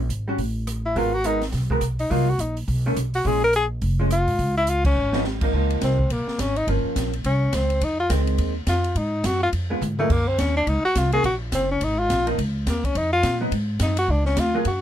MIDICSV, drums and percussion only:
0, 0, Header, 1, 2, 480
1, 0, Start_track
1, 0, Tempo, 285442
1, 1609, Time_signature, 4, 2, 24, 8
1, 24911, End_track
2, 0, Start_track
2, 0, Title_t, "Drums"
2, 170, Note_on_c, 9, 42, 52
2, 338, Note_off_c, 9, 42, 0
2, 646, Note_on_c, 9, 36, 31
2, 646, Note_on_c, 9, 46, 45
2, 814, Note_off_c, 9, 36, 0
2, 814, Note_off_c, 9, 46, 0
2, 1130, Note_on_c, 9, 42, 59
2, 1131, Note_on_c, 9, 37, 65
2, 1298, Note_off_c, 9, 42, 0
2, 1299, Note_off_c, 9, 37, 0
2, 1607, Note_on_c, 9, 36, 32
2, 1615, Note_on_c, 9, 46, 44
2, 1775, Note_off_c, 9, 36, 0
2, 1783, Note_off_c, 9, 46, 0
2, 2087, Note_on_c, 9, 42, 54
2, 2255, Note_off_c, 9, 42, 0
2, 2380, Note_on_c, 9, 46, 36
2, 2382, Note_on_c, 9, 38, 40
2, 2549, Note_off_c, 9, 46, 0
2, 2550, Note_off_c, 9, 38, 0
2, 2562, Note_on_c, 9, 46, 46
2, 2564, Note_on_c, 9, 38, 35
2, 2566, Note_on_c, 9, 36, 34
2, 2730, Note_off_c, 9, 46, 0
2, 2732, Note_off_c, 9, 38, 0
2, 2734, Note_off_c, 9, 36, 0
2, 2860, Note_on_c, 9, 36, 52
2, 3028, Note_off_c, 9, 36, 0
2, 3043, Note_on_c, 9, 42, 57
2, 3045, Note_on_c, 9, 37, 64
2, 3211, Note_off_c, 9, 42, 0
2, 3213, Note_off_c, 9, 37, 0
2, 3347, Note_on_c, 9, 46, 35
2, 3516, Note_off_c, 9, 46, 0
2, 3537, Note_on_c, 9, 36, 35
2, 3543, Note_on_c, 9, 46, 46
2, 3705, Note_off_c, 9, 36, 0
2, 3711, Note_off_c, 9, 46, 0
2, 4020, Note_on_c, 9, 42, 55
2, 4188, Note_off_c, 9, 42, 0
2, 4318, Note_on_c, 9, 46, 36
2, 4486, Note_off_c, 9, 46, 0
2, 4506, Note_on_c, 9, 36, 37
2, 4506, Note_on_c, 9, 46, 46
2, 4674, Note_off_c, 9, 36, 0
2, 4675, Note_off_c, 9, 46, 0
2, 4986, Note_on_c, 9, 42, 60
2, 4987, Note_on_c, 9, 37, 61
2, 5154, Note_off_c, 9, 42, 0
2, 5156, Note_off_c, 9, 37, 0
2, 5277, Note_on_c, 9, 46, 40
2, 5445, Note_off_c, 9, 46, 0
2, 5463, Note_on_c, 9, 46, 47
2, 5464, Note_on_c, 9, 36, 32
2, 5631, Note_off_c, 9, 46, 0
2, 5632, Note_off_c, 9, 36, 0
2, 5936, Note_on_c, 9, 42, 58
2, 6104, Note_off_c, 9, 42, 0
2, 6417, Note_on_c, 9, 46, 47
2, 6422, Note_on_c, 9, 36, 31
2, 6585, Note_off_c, 9, 46, 0
2, 6590, Note_off_c, 9, 36, 0
2, 6905, Note_on_c, 9, 42, 59
2, 6907, Note_on_c, 9, 37, 67
2, 7073, Note_off_c, 9, 42, 0
2, 7075, Note_off_c, 9, 37, 0
2, 7191, Note_on_c, 9, 46, 38
2, 7359, Note_off_c, 9, 46, 0
2, 7379, Note_on_c, 9, 36, 36
2, 7380, Note_on_c, 9, 46, 45
2, 7547, Note_off_c, 9, 36, 0
2, 7548, Note_off_c, 9, 46, 0
2, 7852, Note_on_c, 9, 42, 57
2, 8020, Note_off_c, 9, 42, 0
2, 8149, Note_on_c, 9, 36, 85
2, 8149, Note_on_c, 9, 49, 71
2, 8317, Note_off_c, 9, 36, 0
2, 8318, Note_off_c, 9, 49, 0
2, 8622, Note_on_c, 9, 38, 65
2, 8791, Note_off_c, 9, 38, 0
2, 8812, Note_on_c, 9, 38, 61
2, 8980, Note_off_c, 9, 38, 0
2, 9099, Note_on_c, 9, 49, 67
2, 9106, Note_on_c, 9, 36, 75
2, 9267, Note_off_c, 9, 49, 0
2, 9274, Note_off_c, 9, 36, 0
2, 9592, Note_on_c, 9, 51, 42
2, 9760, Note_off_c, 9, 51, 0
2, 9777, Note_on_c, 9, 36, 17
2, 9777, Note_on_c, 9, 44, 47
2, 9777, Note_on_c, 9, 51, 66
2, 9779, Note_on_c, 9, 38, 61
2, 9945, Note_off_c, 9, 36, 0
2, 9945, Note_off_c, 9, 44, 0
2, 9945, Note_off_c, 9, 51, 0
2, 9947, Note_off_c, 9, 38, 0
2, 10070, Note_on_c, 9, 36, 50
2, 10238, Note_off_c, 9, 36, 0
2, 10259, Note_on_c, 9, 36, 23
2, 10261, Note_on_c, 9, 51, 57
2, 10427, Note_off_c, 9, 36, 0
2, 10429, Note_off_c, 9, 51, 0
2, 10556, Note_on_c, 9, 38, 43
2, 10725, Note_off_c, 9, 38, 0
2, 10738, Note_on_c, 9, 36, 24
2, 10745, Note_on_c, 9, 44, 62
2, 10745, Note_on_c, 9, 51, 66
2, 10747, Note_on_c, 9, 38, 69
2, 10907, Note_off_c, 9, 36, 0
2, 10913, Note_off_c, 9, 44, 0
2, 10913, Note_off_c, 9, 51, 0
2, 10915, Note_off_c, 9, 38, 0
2, 11036, Note_on_c, 9, 51, 40
2, 11204, Note_off_c, 9, 51, 0
2, 11220, Note_on_c, 9, 36, 21
2, 11226, Note_on_c, 9, 51, 58
2, 11388, Note_off_c, 9, 36, 0
2, 11395, Note_off_c, 9, 51, 0
2, 11700, Note_on_c, 9, 36, 23
2, 11704, Note_on_c, 9, 44, 64
2, 11704, Note_on_c, 9, 51, 63
2, 11706, Note_on_c, 9, 38, 60
2, 11868, Note_off_c, 9, 36, 0
2, 11872, Note_off_c, 9, 44, 0
2, 11872, Note_off_c, 9, 51, 0
2, 11874, Note_off_c, 9, 38, 0
2, 11996, Note_on_c, 9, 51, 43
2, 12164, Note_off_c, 9, 51, 0
2, 12180, Note_on_c, 9, 36, 19
2, 12180, Note_on_c, 9, 51, 58
2, 12348, Note_off_c, 9, 36, 0
2, 12348, Note_off_c, 9, 51, 0
2, 12657, Note_on_c, 9, 44, 61
2, 12657, Note_on_c, 9, 51, 70
2, 12659, Note_on_c, 9, 36, 21
2, 12659, Note_on_c, 9, 38, 70
2, 12825, Note_off_c, 9, 44, 0
2, 12825, Note_off_c, 9, 51, 0
2, 12827, Note_off_c, 9, 36, 0
2, 12827, Note_off_c, 9, 38, 0
2, 12947, Note_on_c, 9, 51, 41
2, 13115, Note_off_c, 9, 51, 0
2, 13139, Note_on_c, 9, 51, 65
2, 13140, Note_on_c, 9, 36, 18
2, 13307, Note_off_c, 9, 51, 0
2, 13308, Note_off_c, 9, 36, 0
2, 13617, Note_on_c, 9, 36, 25
2, 13618, Note_on_c, 9, 44, 57
2, 13618, Note_on_c, 9, 51, 71
2, 13619, Note_on_c, 9, 38, 66
2, 13785, Note_off_c, 9, 36, 0
2, 13786, Note_off_c, 9, 44, 0
2, 13786, Note_off_c, 9, 51, 0
2, 13787, Note_off_c, 9, 38, 0
2, 13910, Note_on_c, 9, 51, 46
2, 14078, Note_off_c, 9, 51, 0
2, 14097, Note_on_c, 9, 36, 20
2, 14097, Note_on_c, 9, 51, 61
2, 14265, Note_off_c, 9, 36, 0
2, 14265, Note_off_c, 9, 51, 0
2, 14574, Note_on_c, 9, 44, 55
2, 14574, Note_on_c, 9, 51, 74
2, 14576, Note_on_c, 9, 36, 26
2, 14576, Note_on_c, 9, 38, 69
2, 14742, Note_off_c, 9, 44, 0
2, 14742, Note_off_c, 9, 51, 0
2, 14744, Note_off_c, 9, 38, 0
2, 14745, Note_off_c, 9, 36, 0
2, 14869, Note_on_c, 9, 51, 42
2, 15038, Note_off_c, 9, 51, 0
2, 15056, Note_on_c, 9, 36, 25
2, 15060, Note_on_c, 9, 51, 58
2, 15224, Note_off_c, 9, 36, 0
2, 15228, Note_off_c, 9, 51, 0
2, 15536, Note_on_c, 9, 44, 61
2, 15536, Note_on_c, 9, 51, 69
2, 15537, Note_on_c, 9, 36, 22
2, 15538, Note_on_c, 9, 38, 70
2, 15705, Note_off_c, 9, 36, 0
2, 15705, Note_off_c, 9, 44, 0
2, 15705, Note_off_c, 9, 51, 0
2, 15706, Note_off_c, 9, 38, 0
2, 16018, Note_on_c, 9, 36, 18
2, 16020, Note_on_c, 9, 51, 57
2, 16186, Note_off_c, 9, 36, 0
2, 16189, Note_off_c, 9, 51, 0
2, 16504, Note_on_c, 9, 44, 62
2, 16506, Note_on_c, 9, 47, 49
2, 16672, Note_off_c, 9, 44, 0
2, 16674, Note_off_c, 9, 47, 0
2, 16795, Note_on_c, 9, 47, 58
2, 16963, Note_off_c, 9, 47, 0
2, 16981, Note_on_c, 9, 36, 74
2, 16982, Note_on_c, 9, 49, 77
2, 17150, Note_off_c, 9, 36, 0
2, 17150, Note_off_c, 9, 49, 0
2, 17463, Note_on_c, 9, 36, 21
2, 17463, Note_on_c, 9, 44, 60
2, 17463, Note_on_c, 9, 51, 73
2, 17464, Note_on_c, 9, 38, 73
2, 17631, Note_off_c, 9, 36, 0
2, 17631, Note_off_c, 9, 44, 0
2, 17631, Note_off_c, 9, 51, 0
2, 17632, Note_off_c, 9, 38, 0
2, 17941, Note_on_c, 9, 36, 22
2, 17942, Note_on_c, 9, 51, 60
2, 18110, Note_off_c, 9, 36, 0
2, 18111, Note_off_c, 9, 51, 0
2, 18419, Note_on_c, 9, 36, 26
2, 18420, Note_on_c, 9, 44, 69
2, 18420, Note_on_c, 9, 51, 70
2, 18422, Note_on_c, 9, 38, 74
2, 18587, Note_off_c, 9, 36, 0
2, 18588, Note_off_c, 9, 44, 0
2, 18588, Note_off_c, 9, 51, 0
2, 18590, Note_off_c, 9, 38, 0
2, 18705, Note_on_c, 9, 51, 41
2, 18874, Note_off_c, 9, 51, 0
2, 18897, Note_on_c, 9, 36, 23
2, 18901, Note_on_c, 9, 51, 66
2, 19065, Note_off_c, 9, 36, 0
2, 19069, Note_off_c, 9, 51, 0
2, 19373, Note_on_c, 9, 44, 62
2, 19373, Note_on_c, 9, 51, 70
2, 19375, Note_on_c, 9, 38, 70
2, 19377, Note_on_c, 9, 36, 25
2, 19541, Note_off_c, 9, 44, 0
2, 19541, Note_off_c, 9, 51, 0
2, 19543, Note_off_c, 9, 38, 0
2, 19545, Note_off_c, 9, 36, 0
2, 19857, Note_on_c, 9, 36, 27
2, 19858, Note_on_c, 9, 51, 67
2, 20025, Note_off_c, 9, 36, 0
2, 20026, Note_off_c, 9, 51, 0
2, 20338, Note_on_c, 9, 36, 25
2, 20345, Note_on_c, 9, 44, 55
2, 20345, Note_on_c, 9, 51, 70
2, 20346, Note_on_c, 9, 38, 74
2, 20506, Note_off_c, 9, 36, 0
2, 20513, Note_off_c, 9, 44, 0
2, 20513, Note_off_c, 9, 51, 0
2, 20515, Note_off_c, 9, 38, 0
2, 20631, Note_on_c, 9, 51, 45
2, 20799, Note_off_c, 9, 51, 0
2, 20821, Note_on_c, 9, 36, 26
2, 20828, Note_on_c, 9, 51, 66
2, 20989, Note_off_c, 9, 36, 0
2, 20996, Note_off_c, 9, 51, 0
2, 21300, Note_on_c, 9, 36, 22
2, 21301, Note_on_c, 9, 44, 51
2, 21301, Note_on_c, 9, 51, 67
2, 21303, Note_on_c, 9, 38, 71
2, 21468, Note_off_c, 9, 36, 0
2, 21469, Note_off_c, 9, 44, 0
2, 21469, Note_off_c, 9, 51, 0
2, 21471, Note_off_c, 9, 38, 0
2, 21591, Note_on_c, 9, 36, 58
2, 21601, Note_on_c, 9, 51, 48
2, 21759, Note_off_c, 9, 36, 0
2, 21769, Note_off_c, 9, 51, 0
2, 21778, Note_on_c, 9, 36, 20
2, 21780, Note_on_c, 9, 51, 61
2, 21946, Note_off_c, 9, 36, 0
2, 21948, Note_off_c, 9, 51, 0
2, 22251, Note_on_c, 9, 36, 22
2, 22251, Note_on_c, 9, 44, 70
2, 22251, Note_on_c, 9, 51, 71
2, 22252, Note_on_c, 9, 38, 77
2, 22419, Note_off_c, 9, 44, 0
2, 22419, Note_off_c, 9, 51, 0
2, 22420, Note_off_c, 9, 36, 0
2, 22420, Note_off_c, 9, 38, 0
2, 22730, Note_on_c, 9, 36, 19
2, 22732, Note_on_c, 9, 51, 62
2, 22898, Note_off_c, 9, 36, 0
2, 22900, Note_off_c, 9, 51, 0
2, 23198, Note_on_c, 9, 44, 67
2, 23198, Note_on_c, 9, 51, 76
2, 23200, Note_on_c, 9, 38, 72
2, 23204, Note_on_c, 9, 36, 28
2, 23367, Note_off_c, 9, 44, 0
2, 23367, Note_off_c, 9, 51, 0
2, 23368, Note_off_c, 9, 38, 0
2, 23372, Note_off_c, 9, 36, 0
2, 23489, Note_on_c, 9, 51, 70
2, 23657, Note_off_c, 9, 51, 0
2, 23679, Note_on_c, 9, 36, 25
2, 23848, Note_off_c, 9, 36, 0
2, 23969, Note_on_c, 9, 38, 40
2, 24138, Note_off_c, 9, 38, 0
2, 24158, Note_on_c, 9, 44, 67
2, 24158, Note_on_c, 9, 51, 76
2, 24159, Note_on_c, 9, 36, 25
2, 24160, Note_on_c, 9, 38, 83
2, 24326, Note_off_c, 9, 44, 0
2, 24326, Note_off_c, 9, 51, 0
2, 24327, Note_off_c, 9, 36, 0
2, 24328, Note_off_c, 9, 38, 0
2, 24633, Note_on_c, 9, 51, 62
2, 24636, Note_on_c, 9, 36, 27
2, 24801, Note_off_c, 9, 51, 0
2, 24805, Note_off_c, 9, 36, 0
2, 24911, End_track
0, 0, End_of_file